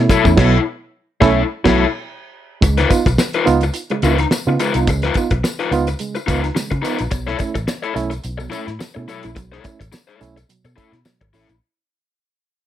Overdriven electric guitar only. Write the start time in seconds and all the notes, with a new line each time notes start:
0.10 E4 A4 C#5
0.26 muted overdriven electric guitar stroke
0.38 E4 A4 C#5
1.21 E4 A4 C#5
1.65 E4 A4 C#5
2.63 muted overdriven electric guitar stroke
2.78 D#4 F4 B4
2.90 muted overdriven electric guitar stroke
3.07 muted overdriven electric guitar stroke
3.19 muted overdriven electric guitar stroke
3.35 D#4 F4 B4
3.46 muted overdriven electric guitar stroke
3.63 muted overdriven electric guitar stroke
3.91 muted overdriven electric guitar stroke
4.03 D#4 F4 B4
4.20 muted overdriven electric guitar stroke
4.32 muted overdriven electric guitar stroke
4.48 muted overdriven electric guitar stroke
4.60 D#4 F4 B4
4.75 muted overdriven electric guitar stroke
4.89 muted overdriven electric guitar stroke
5.03 D#4 F4 B4
5.16 muted overdriven electric guitar stroke
5.31 muted overdriven electric guitar stroke
5.44 muted overdriven electric guitar stroke
5.59 D#4 F4 B4
5.72 muted overdriven electric guitar stroke
5.88 muted overdriven electric guitar stroke
6.15 muted overdriven electric guitar stroke
6.27 D#4 F4 B4
6.44 muted overdriven electric guitar stroke
6.55 muted overdriven electric guitar stroke
6.71 muted overdriven electric guitar stroke
6.82 D#4 F4 B4
7.00 muted overdriven electric guitar stroke
7.11 muted overdriven electric guitar stroke
7.27 E4 A4 C#5
7.38 muted overdriven electric guitar stroke
7.55 muted overdriven electric guitar stroke
7.68 muted overdriven electric guitar stroke
7.83 E4 A4 C#5
7.95 muted overdriven electric guitar stroke
8.10 muted overdriven electric guitar stroke
8.38 muted overdriven electric guitar stroke
8.50 E4 A4 C#5
8.67 muted overdriven electric guitar stroke
8.79 muted overdriven electric guitar stroke
8.95 muted overdriven electric guitar stroke
9.08 E4 A4 C#5
9.24 muted overdriven electric guitar stroke
9.35 muted overdriven electric guitar stroke
9.52 E4 A4 C#5
9.64 muted overdriven electric guitar stroke
9.80 muted overdriven electric guitar stroke
9.92 muted overdriven electric guitar stroke
10.07 E4 A4 C#5
10.20 muted overdriven electric guitar stroke
10.36 muted overdriven electric guitar stroke
10.65 muted overdriven electric guitar stroke
10.76 E4 A4 C#5
10.92 muted overdriven electric guitar stroke
11.05 muted overdriven electric guitar stroke
11.21 muted overdriven electric guitar stroke
11.33 E4 A4 C#5
11.49 muted overdriven electric guitar stroke